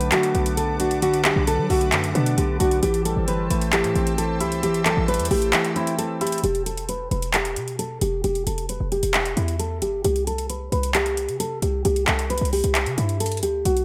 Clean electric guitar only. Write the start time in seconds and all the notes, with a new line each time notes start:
Already playing: D3 F#3 A3
0.12 D3
0.35 B3
0.57 D3
0.80 D4
1.02 D3
1.25 F#3
1.47 D3
1.70 A3
1.92 D3
2.15 B3
2.38 D3
2.60 D4
2.83 E3
3.05 G3
3.28 E3
3.50 A3
3.73 E3
3.95 C4
4.18 E3
4.41 E4
4.63 E3
4.86 G3
5.08 E3
5.31 A3
5.53 E3
5.76 C4
5.99 E3
6.21 E4